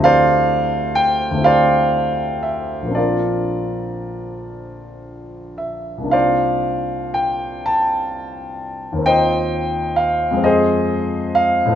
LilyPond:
\new Staff \with { instrumentName = "Grand piano" } { \time 6/8 \key c \dorian \tempo 4. = 42 << { <c'' d'' f''>4 g''8 <c'' d'' f''>4 e''8 | <f' bes' d''>4. r4 e''8 | <c'' d'' f''>4 g''8 a''4. | <c'' ees'' g''>4 f''8 <aes' c'' ees''>4 f''8 | } \\ { <d, a c' e' g'>4. <d, a c' e' g'>4. | <bes,, bes c' d'>2. | <c, bes d' ees' f'>2. | <ees, bes c' ees' f'>4. <f, aes c' f'>4. | } >> }